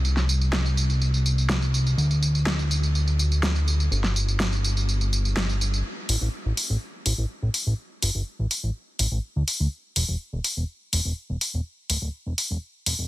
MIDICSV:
0, 0, Header, 1, 3, 480
1, 0, Start_track
1, 0, Tempo, 483871
1, 42, Time_signature, 4, 2, 24, 8
1, 12973, End_track
2, 0, Start_track
2, 0, Title_t, "Analog synth bass"
2, 0, Program_c, 0, 38
2, 0, Note_on_c, 0, 36, 85
2, 1938, Note_off_c, 0, 36, 0
2, 1961, Note_on_c, 0, 38, 86
2, 3858, Note_off_c, 0, 38, 0
2, 3882, Note_on_c, 0, 31, 87
2, 5778, Note_off_c, 0, 31, 0
2, 6041, Note_on_c, 0, 33, 91
2, 6117, Note_off_c, 0, 33, 0
2, 6164, Note_on_c, 0, 33, 79
2, 6236, Note_off_c, 0, 33, 0
2, 6404, Note_on_c, 0, 33, 74
2, 6476, Note_off_c, 0, 33, 0
2, 6645, Note_on_c, 0, 33, 78
2, 6717, Note_off_c, 0, 33, 0
2, 7001, Note_on_c, 0, 33, 91
2, 7077, Note_off_c, 0, 33, 0
2, 7124, Note_on_c, 0, 33, 76
2, 7196, Note_off_c, 0, 33, 0
2, 7364, Note_on_c, 0, 33, 75
2, 7436, Note_off_c, 0, 33, 0
2, 7604, Note_on_c, 0, 33, 79
2, 7676, Note_off_c, 0, 33, 0
2, 7961, Note_on_c, 0, 31, 92
2, 8037, Note_off_c, 0, 31, 0
2, 8084, Note_on_c, 0, 31, 79
2, 8156, Note_off_c, 0, 31, 0
2, 8324, Note_on_c, 0, 33, 75
2, 8396, Note_off_c, 0, 33, 0
2, 8564, Note_on_c, 0, 33, 79
2, 8636, Note_off_c, 0, 33, 0
2, 8922, Note_on_c, 0, 33, 90
2, 8997, Note_off_c, 0, 33, 0
2, 9044, Note_on_c, 0, 33, 79
2, 9116, Note_off_c, 0, 33, 0
2, 9285, Note_on_c, 0, 38, 74
2, 9357, Note_off_c, 0, 38, 0
2, 9524, Note_on_c, 0, 38, 79
2, 9596, Note_off_c, 0, 38, 0
2, 9881, Note_on_c, 0, 28, 90
2, 9957, Note_off_c, 0, 28, 0
2, 10005, Note_on_c, 0, 28, 80
2, 10077, Note_off_c, 0, 28, 0
2, 10245, Note_on_c, 0, 28, 77
2, 10317, Note_off_c, 0, 28, 0
2, 10484, Note_on_c, 0, 28, 81
2, 10557, Note_off_c, 0, 28, 0
2, 10841, Note_on_c, 0, 28, 91
2, 10917, Note_off_c, 0, 28, 0
2, 10965, Note_on_c, 0, 28, 77
2, 11037, Note_off_c, 0, 28, 0
2, 11204, Note_on_c, 0, 28, 76
2, 11276, Note_off_c, 0, 28, 0
2, 11444, Note_on_c, 0, 28, 82
2, 11516, Note_off_c, 0, 28, 0
2, 11802, Note_on_c, 0, 26, 95
2, 11877, Note_off_c, 0, 26, 0
2, 11924, Note_on_c, 0, 26, 82
2, 11996, Note_off_c, 0, 26, 0
2, 12164, Note_on_c, 0, 28, 75
2, 12237, Note_off_c, 0, 28, 0
2, 12404, Note_on_c, 0, 28, 82
2, 12476, Note_off_c, 0, 28, 0
2, 12761, Note_on_c, 0, 28, 93
2, 12837, Note_off_c, 0, 28, 0
2, 12884, Note_on_c, 0, 28, 80
2, 12957, Note_off_c, 0, 28, 0
2, 12973, End_track
3, 0, Start_track
3, 0, Title_t, "Drums"
3, 48, Note_on_c, 9, 54, 40
3, 147, Note_off_c, 9, 54, 0
3, 166, Note_on_c, 9, 38, 32
3, 171, Note_on_c, 9, 54, 28
3, 265, Note_off_c, 9, 38, 0
3, 270, Note_off_c, 9, 54, 0
3, 287, Note_on_c, 9, 54, 73
3, 387, Note_off_c, 9, 54, 0
3, 410, Note_on_c, 9, 54, 32
3, 510, Note_off_c, 9, 54, 0
3, 523, Note_on_c, 9, 38, 102
3, 527, Note_on_c, 9, 54, 42
3, 622, Note_off_c, 9, 38, 0
3, 627, Note_off_c, 9, 54, 0
3, 650, Note_on_c, 9, 54, 29
3, 750, Note_off_c, 9, 54, 0
3, 767, Note_on_c, 9, 54, 73
3, 867, Note_off_c, 9, 54, 0
3, 890, Note_on_c, 9, 54, 31
3, 990, Note_off_c, 9, 54, 0
3, 1007, Note_on_c, 9, 54, 41
3, 1107, Note_off_c, 9, 54, 0
3, 1130, Note_on_c, 9, 54, 29
3, 1230, Note_off_c, 9, 54, 0
3, 1247, Note_on_c, 9, 54, 73
3, 1347, Note_off_c, 9, 54, 0
3, 1371, Note_on_c, 9, 54, 31
3, 1470, Note_off_c, 9, 54, 0
3, 1483, Note_on_c, 9, 38, 104
3, 1488, Note_on_c, 9, 54, 41
3, 1582, Note_off_c, 9, 38, 0
3, 1587, Note_off_c, 9, 54, 0
3, 1611, Note_on_c, 9, 54, 29
3, 1710, Note_off_c, 9, 54, 0
3, 1727, Note_on_c, 9, 54, 72
3, 1827, Note_off_c, 9, 54, 0
3, 1851, Note_on_c, 9, 54, 31
3, 1950, Note_off_c, 9, 54, 0
3, 1968, Note_on_c, 9, 54, 43
3, 2067, Note_off_c, 9, 54, 0
3, 2091, Note_on_c, 9, 54, 30
3, 2190, Note_off_c, 9, 54, 0
3, 2208, Note_on_c, 9, 54, 75
3, 2307, Note_off_c, 9, 54, 0
3, 2331, Note_on_c, 9, 54, 33
3, 2430, Note_off_c, 9, 54, 0
3, 2443, Note_on_c, 9, 38, 108
3, 2448, Note_on_c, 9, 54, 43
3, 2542, Note_off_c, 9, 38, 0
3, 2547, Note_off_c, 9, 54, 0
3, 2571, Note_on_c, 9, 54, 31
3, 2670, Note_off_c, 9, 54, 0
3, 2688, Note_on_c, 9, 54, 74
3, 2787, Note_off_c, 9, 54, 0
3, 2811, Note_on_c, 9, 54, 31
3, 2910, Note_off_c, 9, 54, 0
3, 2928, Note_on_c, 9, 54, 43
3, 3027, Note_off_c, 9, 54, 0
3, 3051, Note_on_c, 9, 54, 30
3, 3150, Note_off_c, 9, 54, 0
3, 3168, Note_on_c, 9, 54, 75
3, 3267, Note_off_c, 9, 54, 0
3, 3291, Note_on_c, 9, 54, 32
3, 3390, Note_off_c, 9, 54, 0
3, 3403, Note_on_c, 9, 38, 109
3, 3408, Note_on_c, 9, 54, 44
3, 3502, Note_off_c, 9, 38, 0
3, 3507, Note_off_c, 9, 54, 0
3, 3531, Note_on_c, 9, 54, 31
3, 3630, Note_off_c, 9, 54, 0
3, 3648, Note_on_c, 9, 54, 72
3, 3747, Note_off_c, 9, 54, 0
3, 3771, Note_on_c, 9, 54, 33
3, 3870, Note_off_c, 9, 54, 0
3, 3888, Note_on_c, 9, 54, 41
3, 3987, Note_off_c, 9, 54, 0
3, 4006, Note_on_c, 9, 38, 35
3, 4010, Note_on_c, 9, 54, 30
3, 4105, Note_off_c, 9, 38, 0
3, 4110, Note_off_c, 9, 54, 0
3, 4127, Note_on_c, 9, 54, 77
3, 4227, Note_off_c, 9, 54, 0
3, 4250, Note_on_c, 9, 54, 33
3, 4350, Note_off_c, 9, 54, 0
3, 4363, Note_on_c, 9, 38, 112
3, 4368, Note_on_c, 9, 54, 43
3, 4462, Note_off_c, 9, 38, 0
3, 4467, Note_off_c, 9, 54, 0
3, 4491, Note_on_c, 9, 54, 31
3, 4590, Note_off_c, 9, 54, 0
3, 4607, Note_on_c, 9, 54, 77
3, 4707, Note_off_c, 9, 54, 0
3, 4731, Note_on_c, 9, 54, 32
3, 4830, Note_off_c, 9, 54, 0
3, 4848, Note_on_c, 9, 54, 42
3, 4947, Note_off_c, 9, 54, 0
3, 4970, Note_on_c, 9, 54, 31
3, 5070, Note_off_c, 9, 54, 0
3, 5087, Note_on_c, 9, 54, 78
3, 5187, Note_off_c, 9, 54, 0
3, 5210, Note_on_c, 9, 54, 33
3, 5309, Note_off_c, 9, 54, 0
3, 5323, Note_on_c, 9, 38, 111
3, 5328, Note_on_c, 9, 54, 43
3, 5422, Note_off_c, 9, 38, 0
3, 5427, Note_off_c, 9, 54, 0
3, 5451, Note_on_c, 9, 54, 31
3, 5550, Note_off_c, 9, 54, 0
3, 5567, Note_on_c, 9, 54, 76
3, 5667, Note_off_c, 9, 54, 0
3, 5691, Note_on_c, 9, 54, 33
3, 5790, Note_off_c, 9, 54, 0
3, 6041, Note_on_c, 9, 46, 98
3, 6140, Note_off_c, 9, 46, 0
3, 6521, Note_on_c, 9, 46, 88
3, 6621, Note_off_c, 9, 46, 0
3, 7001, Note_on_c, 9, 46, 98
3, 7100, Note_off_c, 9, 46, 0
3, 7481, Note_on_c, 9, 46, 85
3, 7580, Note_off_c, 9, 46, 0
3, 7961, Note_on_c, 9, 46, 105
3, 8060, Note_off_c, 9, 46, 0
3, 8441, Note_on_c, 9, 46, 89
3, 8540, Note_off_c, 9, 46, 0
3, 8921, Note_on_c, 9, 46, 105
3, 9020, Note_off_c, 9, 46, 0
3, 9401, Note_on_c, 9, 46, 89
3, 9500, Note_off_c, 9, 46, 0
3, 9881, Note_on_c, 9, 46, 105
3, 9980, Note_off_c, 9, 46, 0
3, 10361, Note_on_c, 9, 46, 92
3, 10460, Note_off_c, 9, 46, 0
3, 10841, Note_on_c, 9, 46, 106
3, 10940, Note_off_c, 9, 46, 0
3, 11321, Note_on_c, 9, 46, 92
3, 11420, Note_off_c, 9, 46, 0
3, 11801, Note_on_c, 9, 46, 105
3, 11901, Note_off_c, 9, 46, 0
3, 12281, Note_on_c, 9, 46, 92
3, 12380, Note_off_c, 9, 46, 0
3, 12761, Note_on_c, 9, 46, 109
3, 12860, Note_off_c, 9, 46, 0
3, 12973, End_track
0, 0, End_of_file